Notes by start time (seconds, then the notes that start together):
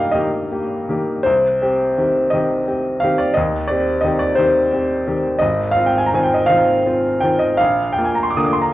Already playing: G2 D#3 A#3 G4 D#5 F5 G5
0.12 D#3 A#3 G4 D#5
0.52 A#3 G4
0.89 D#3 A#3 G4
1.23 C2 C5
1.62 C4 G4
1.98 D#3 C4 G4
2.30 D#3 C4 G4 D#5
2.68 C4 G4
3.00 D#3 C4 G4 F5
3.18 D5
3.34 D#2 D#5
3.67 C4 G4 D5
4.01 D#3 D#5
4.05 C4 G4
4.19 D5
4.35 D#3 C4 G4 C5
4.73 C4 G4
5.08 D#3 C4 G4
5.39 G#1 D#5
5.71 F5
5.76 C4 F4
5.86 G5
5.98 G#5
6.06 A#5
6.13 D#3 C4 F4 G#5
6.23 G5
6.34 D#5
6.46 D#3 C4 F4 F5
6.86 C4 F4
7.21 D#3 C4 F4 G5
7.39 D#5
7.57 A#1 F5
7.93 G5
7.98 A#3 F4
8.04 G#5
8.15 A#5
8.23 C6
8.31 D6
8.36 D3 A#3 F4 D#6
8.44 D6
8.53 C6
8.62 A#5